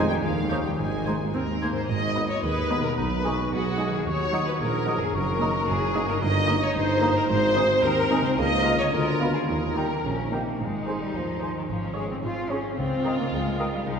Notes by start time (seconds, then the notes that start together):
Already playing: F1 F2 F3 D#5
0.05 G3 D#4 G#4 G5
0.10 G3
0.23 D#2 D#3 F3 F5
0.42 C#4
0.49 A#3 D#4 G4 C#5 G6
0.59 G3 D#4 G4
0.64 G3 G5
0.78 G#1 G#2 G#3 G#5
0.97 D#3
1.05 G#3 D#4 G#4 C5 G#6
1.16 D#4
1.33 D#2 C4 G#4 A#4
1.52 C5
1.61 A#3 D#4 G#4 C5 G#6
1.71 G#2 G#4
1.76 B3 C5
1.81 D#4
1.85 G#4 D#5
1.89 G#1 G#2
2.16 G#3 B3 D#4 D#5 G#5 B5
2.30 C#5
2.43 D#2 G#4 B4
2.70 G#3 B3 D#4 D#5 G#5 B5
2.80 B2
2.84 G#3 A#4
2.89 D#4
2.94 G#4
2.98 B1 B2 D#4 B4
3.24 G#3 D#4 F#4 D#5 G#5
3.53 B1 B2 F#4 G#4
3.79 G#3 D#4 D#5 G#5
3.89 D#3
3.93 A#3 G#4
3.98 D#4
4.02 F#4
4.06 D#2 F#4 C#5
4.33 F#3 D#4 D#5 F#5 A#5
4.48 B4
4.60 A#1 A#2 G#4 A#4
4.87 F#3 D#4 D#5 F#5 A#5
4.97 F#2
5.01 A#3 G#4
5.06 D#4
5.10 A#4
5.14 F#1 F#2 F#4 A#4
5.40 A#3 D#4 D#5 A#5
5.68 F#1 F#2 G#4
5.95 A#3 D#4 D#5 A#5
6.04 G2
6.08 A#3 A#4
6.13 D#4
6.17 A#4
6.22 G1 G2 D#4 D#5
6.48 A#3 D#4 D#5 A#5
6.62 C#5
6.75 G1 G2 C5
7.01 A#3 D#4 D#5 A#5
7.11 G#2
7.16 C4 A#4
7.20 D#4
7.25 G#4
7.29 G#1 G#2 C5
7.56 C4 D#4 D#5 G#5
7.84 D#2 C4 A#4
8.10 C4 D#4 D#5 G#5
8.20 C#3
8.25 A#3 C5
8.29 F4
8.34 A#4
8.38 C#2 C#3 A#3 D#5
8.64 A#3 F4 F5 A#5
8.74 D3
8.79 B3 C#5
8.83 F4
8.88 G#4
8.92 D2 D3 F4 A#4
9.19 B3 F4 F5 G#5 B5
9.30 D#3 G#4
9.35 A#3
9.40 D#4
9.44 G4
9.48 D#2 D#3 D#4 A#4
9.76 G3 A#3 D#4 G4 G5 A#5
9.91 A#3
10.04 A#1 C#3 C#4
10.32 C3 A#3 D#4 G4 G5 A#5
10.60 G#1 G#2 G#3 D#4
10.79 D#3
10.87 D#4 G#4 C5 G#5
10.97 D#4
11.01 G3
11.15 D#2 F3 G#4
11.33 C5
11.42 D#4 G#4 C5 G#5
11.51 D#3 G#4
11.57 D#3
11.68 G#1 G#2 F3 C#4
11.87 G#3
11.95 G#3 G#4 C#5 G#5
12.05 C4 C#4
12.11 C4
12.23 G#1 C4 F4 G#4
12.41 C5
12.50 C#4 G#4 C#5 G#5
12.59 G#4
12.78 C#2 C#3 C4 F4
12.96 G3
13.05 A#4 D#5 G5
13.14 D#4
13.19 A#3
13.32 C#2 G#3 G4
13.50 A#4
13.59 A#4 D#5 G5
13.68 G4
13.73 G3
13.86 C2 C3 G#3 D#4